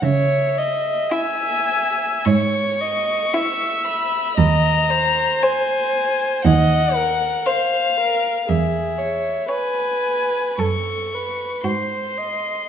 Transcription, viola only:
X:1
M:4/4
L:1/8
Q:1/4=57
K:C#m
V:1 name="Viola"
c d e2 c d e2 | _e =c3 e ^A c A | G c B2 A B ^B d |]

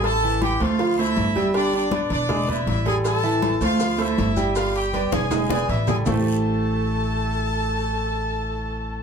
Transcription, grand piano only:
X:1
M:4/4
L:1/8
Q:1/4=159
K:Am
V:1 name="Grand piano"
z [E,Ee]2 [A,Ac] [F,Ff] [A,Ac]2 [G,Gg] | [G,Gg]2 [B,Bd]2 [^G,^G^g] [B,Bd]2 [=G,=GA]- | [G,GA] [E,Ee]2 [A,Ac] [F,Ff] [A,Ac]2 [G,Gg] | [G,Gg]2 [B,Bd]2 [^G,^G^g] [B,Bd]2 [=G,=GA] |
[A,EGAce]8- | [A,EGAce]8 |]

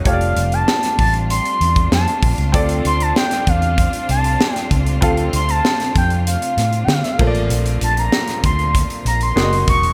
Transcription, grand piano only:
X:1
M:4/4
L:1/8
Q:1/4=97
K:Dm
V:1 name="Grand piano"
[A,FG^cd]8 | [CFAd]8 | [CFAf]6- [CFAf] [A,B,Fcd]- | [A,B,Fcd]6 [^A,^F^Gd^d]2 |]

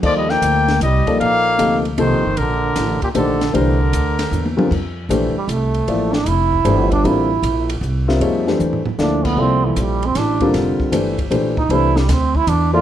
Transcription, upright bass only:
X:1
M:3/4
L:1/8
Q:"Swing" 1/4=154
K:Eblyd
V:1 name="Upright bass" clef=bass
E,,2 D,,2 C,, z | B,,,2 D,,2 (3C,, B,,, G,,, | B,,,2 A,,, z B,,,2 | C,,2 D,,2 =E,,2 |
[K:F] F,,2 B,,, z C,,2 | A,,,2 F,,,2 G,,,2 | A,,,2 B,,,2 C,,2 | F,,2 E,, z D,,2 |
C,,2 B,,,2 A,,,2 | F,,, z G,,,2 B,,,2 | C,,2 D,,2 E,,2 |]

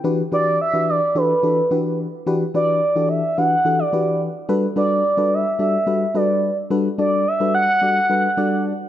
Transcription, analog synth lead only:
X:1
M:4/4
L:1/16
Q:1/4=108
K:Em
V:1 name="Analog synth lead"
z2 d2 e2 d2 B6 z2 | z2 d4 e2 f3 d3 z2 | z2 d4 e2 e4 d3 z | z2 d2 e2 f8 z2 |]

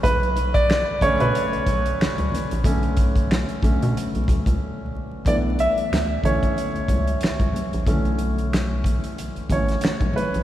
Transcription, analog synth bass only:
X:1
M:4/4
L:1/16
Q:"Swing 16ths" 1/4=92
K:Bm
V:1 name="Analog synth bass" clef=bass
B,,,4- B,,, z B,,, B,, z B,,, B,,,2 D,, D,, z ^A,,, | B,,,4- B,,, z B,,, B,, z B,,, D,, C,, z4 | B,,,3 z D,,2 B,,, z2 C,, C,,2 C,, C,, z ^A,,, | B,,,6- B,,, z2 A,,, A,,,2 B,,, B,,, z ^A,,, |]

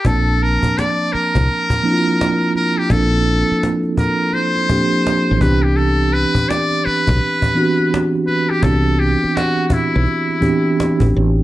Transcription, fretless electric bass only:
X:1
M:4/4
L:1/16
Q:"Swing 16ths" 1/4=84
K:Bb
V:1 name="Fretless electric bass" clef=bass
B,,,3 z4 C,, z8 | B,,,3 z8 z2 A,,, C,,2- | C,,3 z4 =B,,, z8 | C,,3 z4 =B,,, z4 z A,,, A,,,2 |]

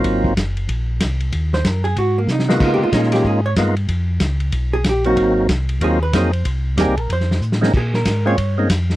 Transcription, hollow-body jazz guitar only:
X:1
M:4/4
L:1/8
Q:"Swing" 1/4=187
K:Ab
V:1 name="Hollow-body jazz guitar"
z8 | z c B A _G B, E G | (3F G F E G A d z2 | z4 z A G _G- |
_G2 z2 A _c =c2 | z2 A B c2 z2 | A B2 d2 z3 |]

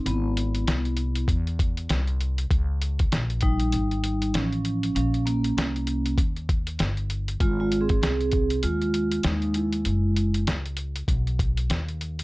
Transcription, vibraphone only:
X:1
M:4/4
L:1/8
Q:"Swing 16ths" 1/4=98
K:Ab
V:1 name="Vibraphone"
[_C=E]4 z4 | z3 [G,E]3 [F,D]2 | [F,D] [B,D]3 z4 | (3[A,F] [A,F] [CA] [CA]2 [A,F]2 [A,E] [A,_F]- |
[A,_F]2 z6 |]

